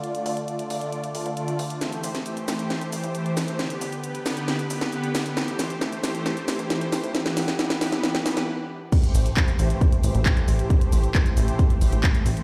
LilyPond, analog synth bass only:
\new Staff \with { instrumentName = "Analog synth bass" } { \clef bass \time 4/4 \key a \minor \tempo 4 = 135 r8 d,16 r8. d,16 r8. d,16 d,16 r8 d,16 r16 | r8 c,16 r8. c,16 r8. c,16 c,16 r8 c,16 r16 | r8 g,,16 r8. g,,16 r8. g,,16 g,,16 r8 g,,16 r16 | r8 a,,16 r8. a,,16 r4. r16 a,,16 r16 |
r2 r8 e,16 r4 r16 | r8 a,,16 r8. a,,16 r8. a,,16 a,,16 r8 a,,16 r16 | r8 a,,16 r8. a,,16 r8. a,,16 a,,16 r8 a,,16 r16 | }